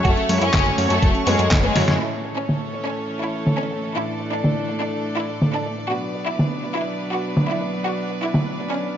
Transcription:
Already playing: analog polysynth A3 C#4 F#4 C#5, string section C#5
0.05 analog synth bass F#1, synth arpeggio sound F#3, violin section A3 F#4, string section A4 F#5 C#6, kick, closed hi-hat
0.17 synth arpeggio sound C#4, closed hi-hat
0.29 analog synth bass F#2, synth arpeggio sound G#3, analog polysynth A3 C#4 F#4 C#5, open hi-hat
0.41 analog synth bass F#2, synth arpeggio sound F#3, violin section C#4 E4, closed hi-hat
0.54 analog synth bass F#1, synth arpeggio sound F#3, kick, snare, clap, closed hi-hat
0.66 synth arpeggio sound A3, snare, closed hi-hat
0.78 analog synth bass F#2, synth arpeggio sound F#3, analog polysynth A3 C#4 F#4 C#5, open hi-hat
0.90 analog synth bass F#2, violin section A3 C#4, synth arpeggio sound F#4, closed hi-hat
1.02 analog synth bass F#1, synth arpeggio sound F#3, kick, closed hi-hat
1.15 synth arpeggio sound C#4, closed hi-hat
1.27 analog synth bass F#2, synth arpeggio sound G#3, violin section G#3 B3, analog polysynth A3 C#4 F#4 C#5, open hi-hat
1.39 analog synth bass F#2, synth arpeggio sound F#3, closed hi-hat
1.51 analog synth bass F#1, synth arpeggio sound F#3, kick, snare, clap, closed hi-hat
1.63 violin section G#3 B3, synth arpeggio sound A3, closed hi-hat
1.76 analog synth bass F#2, analog polysynth A2 A3 C#4 F#4 C#5, synth arpeggio sound F#3, snare, open hi-hat
1.88 analog synth bass F#2, synth arpeggio sound F#4, snare, closed hi-hat
2.00 analog polysynth A2 A3 C#4 E4 C#5, string section E3 A3 C#4 A4 C#5, violin section E4, closed hi-hat
2.25 closed hi-hat
2.37 violin section C#4, closed hi-hat
2.49 snare, closed hi-hat
2.61 closed hi-hat
2.73 closed hi-hat
2.85 violin section C#4, closed hi-hat
2.98 closed hi-hat
3.10 closed hi-hat
3.22 violin section E4, closed hi-hat
3.34 closed hi-hat
3.46 snare, closed hi-hat
3.59 violin section C#4, closed hi-hat
3.71 closed hi-hat
3.83 closed hi-hat
3.95 string section A2 D4 D5, analog polysynth A2 A3 D4 E4 D5, violin section E4, closed hi-hat
4.08 closed hi-hat
4.20 closed hi-hat
4.32 violin section D4, closed hi-hat
4.44 snare, closed hi-hat
4.56 closed hi-hat
4.69 closed hi-hat
4.81 violin section D4, closed hi-hat
4.93 closed hi-hat
5.05 closed hi-hat
5.17 violin section E4, closed hi-hat
5.29 closed hi-hat
5.42 snare, closed hi-hat
5.54 violin section D4, closed hi-hat
5.66 closed hi-hat
5.78 closed hi-hat
5.90 analog polysynth B2 B3 D4 F#4 D5, string section F#3 B3 D4 B4, violin section F#4, closed hi-hat
6.03 closed hi-hat
6.15 closed hi-hat
6.27 violin section E4, closed hi-hat
6.39 snare, closed hi-hat
6.51 closed hi-hat
6.64 closed hi-hat
6.76 violin section E4, closed hi-hat
6.88 closed hi-hat
7.00 closed hi-hat
7.12 violin section F#4, closed hi-hat
7.24 closed hi-hat
7.37 snare, closed hi-hat
7.49 violin section E4
7.61 closed hi-hat
7.73 closed hi-hat
7.85 violin section F#4, closed hi-hat
7.98 closed hi-hat
8.10 closed hi-hat
8.22 violin section E4, closed hi-hat
8.34 snare, closed hi-hat
8.46 closed hi-hat
8.59 closed hi-hat
8.71 violin section C#4, closed hi-hat
8.83 closed hi-hat

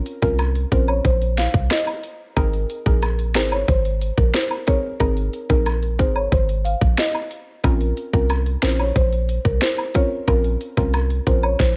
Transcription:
Already playing: synth pluck C4 C#4 F4 A#4
0.06 closed hi-hat, cabasa
0.22 808-style bass C2, synth pluck C4 C#4 F4 A#4, marimba A#4, kick
0.39 cross-stick, closed hi-hat, high woodblock
0.55 closed hi-hat
0.72 808-style bass A#1, synth pluck C4 C#4 F4 A#4, marimba C5, kick, closed hi-hat, cabasa
0.88 marimba C#5, high woodblock
1.05 808-style bass A#1, marimba C5, kick, closed hi-hat
1.22 closed hi-hat
1.38 marimba F5, snare, closed hi-hat, cabasa
1.54 808-style bass C2, kick
1.71 marimba D#5, cross-stick, snare, closed hi-hat
1.87 closed hi-hat, high woodblock
2.03 closed hi-hat, cabasa
2.36 808-style bass G#1, synth pluck C4 D#4 G#4 A#4, marimba A#4, kick, closed hi-hat, high woodblock
2.53 closed hi-hat
2.69 closed hi-hat, cabasa
2.86 808-style bass A#1, synth pluck C4 D#4 G#4 A#4, marimba A#4, kick
3.02 cross-stick, closed hi-hat, high woodblock
3.19 closed hi-hat
3.35 808-style bass G#1, synth pluck C4 D#4 G#4 A#4, marimba C5, snare, closed hi-hat, cabasa
3.52 marimba C#5, high woodblock
3.68 808-style bass G#1, marimba C5, kick, closed hi-hat
3.85 closed hi-hat
4.01 closed hi-hat, cabasa
4.18 808-style bass A#1, marimba A#4, kick
4.34 marimba C5, snare, closed hi-hat
4.51 high woodblock
4.67 synth pluck C4 D#4 G#4 A#4, marimba C#5, kick, closed hi-hat, cabasa
5.00 808-style bass G#1, synth pluck C4 D#4 G#4 A#4, marimba A#4, kick, closed hi-hat, high woodblock
5.17 closed hi-hat
5.33 closed hi-hat, cabasa
5.50 808-style bass A#1, synth pluck C4 D#4 G#4 A#4, marimba A#4, kick
5.66 cross-stick, closed hi-hat, high woodblock
5.83 closed hi-hat
5.99 808-style bass G#1, synth pluck C4 D#4 G#4 A#4, marimba C5, kick, closed hi-hat, cabasa
6.15 marimba C#5, high woodblock
6.32 808-style bass G#1, marimba C5, kick, closed hi-hat
6.49 closed hi-hat
6.65 marimba F5, closed hi-hat, cabasa
6.81 808-style bass A#1, kick
6.98 marimba D#5, snare, closed hi-hat
7.15 high woodblock
7.31 closed hi-hat, cabasa
7.64 808-style bass A#1, synth pluck C4 C#4 F4 A#4, marimba A#4, kick, closed hi-hat, high woodblock
7.81 closed hi-hat
7.97 closed hi-hat, cabasa
8.13 808-style bass C2, synth pluck C4 C#4 F4 A#4, marimba A#4, kick
8.30 cross-stick, closed hi-hat, high woodblock
8.46 closed hi-hat
8.62 808-style bass A#1, synth pluck C4 C#4 F4 A#4, marimba C5, snare, closed hi-hat, cabasa
8.79 marimba C#5, high woodblock
8.96 808-style bass A#1, marimba C5, kick, closed hi-hat
9.13 closed hi-hat
9.29 closed hi-hat, cabasa
9.45 808-style bass C2, marimba A#4, kick
9.62 marimba C5, snare, closed hi-hat
9.78 high woodblock
9.94 synth pluck C4 C#4 F4 A#4, marimba C#5, kick, closed hi-hat, cabasa
10.27 808-style bass A#1, synth pluck C4 C#4 F4 A#4, marimba A#4, kick, closed hi-hat, high woodblock
10.44 closed hi-hat
10.61 closed hi-hat, cabasa
10.77 808-style bass C2, synth pluck C4 C#4 F4 A#4, marimba A#4, kick
10.94 cross-stick, closed hi-hat, high woodblock
11.10 closed hi-hat
11.27 808-style bass A#1, synth pluck C4 C#4 F4 A#4, marimba C5, kick, closed hi-hat, cabasa
11.43 marimba C#5, high woodblock
11.60 808-style bass A#1, marimba C5, kick, snare, closed hi-hat

